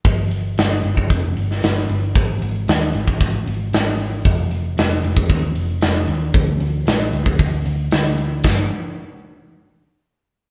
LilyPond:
<<
  \new Staff \with { instrumentName = "Picked electric bass" } { \clef bass \time 4/4 \key f \mixolydian \tempo 4 = 114 g,,4 g,,8 g,,8 f,,8 g,,8 g,,8 g,,8 | aes,,8 aes,,8 ees,8 aes,,8 aes,,8 aes,,8 aes,,4 | f,,4 f,,8 f,,8 ees,8 f,,8 f,,8 ees,8 | d,8 d,8 a,,8 d,8 d,8 d,8 d,4 |
g,,8 r2. r8 | }
  \new DrumStaff \with { instrumentName = "Drums" } \drummode { \time 4/4 <hho bd>8 hho8 <hho sn>8 hho16 bd16 <hho bd>8 hho16 sn16 <hho sn>8 hho8 | <hho bd>8 hho8 <hho sn>8 hho16 bd16 <hho bd>8 hho8 <hho sn>8 hho8 | <hho bd>8 hho8 <hho sn>8 hho16 bd16 <hho bd>8 hho8 <hho sn>8 hho8 | <hho bd>8 hho8 <hho sn>8 hho16 bd16 <hho bd>8 hho8 <hho sn>8 hho8 |
<cymc bd sn>4 r4 r4 r4 | }
>>